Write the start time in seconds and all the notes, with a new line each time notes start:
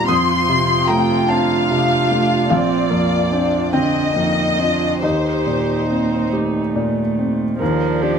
Already playing: A#2 D#3 G3 F4 D6
0.08 F2 C4 C6 D#6
0.49 C3
0.87 A3 G5 A#5
1.28 C4 D4 F5 A5
1.71 C3
2.11 A3
2.50 A#1 C4 D5 F5
2.90 F2 A#3
3.32 C4 D4
3.73 D3 C4 D4 D#5 G5
4.16 F2 A#3 D#4
4.59 C4 D4 F4
5.02 D#2 D#4 G4 C5 D#5
5.46 A#2
5.89 A#3 C4
6.32 A3 G4
6.75 A#2
7.19 C4
7.59 D#2 F3 D4 A#4
8.02 D4 G4